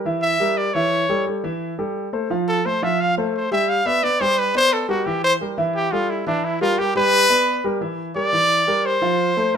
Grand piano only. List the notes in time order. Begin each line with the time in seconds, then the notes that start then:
0.05 E3 E4 E5
0.40 G3 G4 A#4
0.75 E3 E4 E5
1.09 G3 G4 A4
1.26 G3 G4 A4
1.44 E3 E4 E5
1.78 G3 G4 A4
2.13 A3 A4 C5
2.30 F3 F4 F5
2.65 A3 A4 C5
2.82 F3 F4 F5
3.17 A3 A4 C5
3.51 G3 G4 G5
3.86 B3 B4 D5
4.03 B3 B4 D5
4.20 G3 G4 G5
4.55 B3 B4 D5
4.88 G3 G4 A#4
5.06 E3 E4 E5
5.41 G3 G4 A#4
5.58 E3 E4 E5
5.92 G3 G4 A4
6.27 E3 E4 E5
6.61 G3 G4 A#4
6.78 G3 G4 A#4
6.95 G3 G4 G5
7.30 B3 B4 D5
7.64 G3 G4 A#4
7.81 E3 E4 E5
8.15 G3 G4 A#4
8.33 E3 E4 E5
8.67 G3 G4 A#4
9.02 F3 F4 F5
9.37 A3 A4 C5
9.54 A3 A4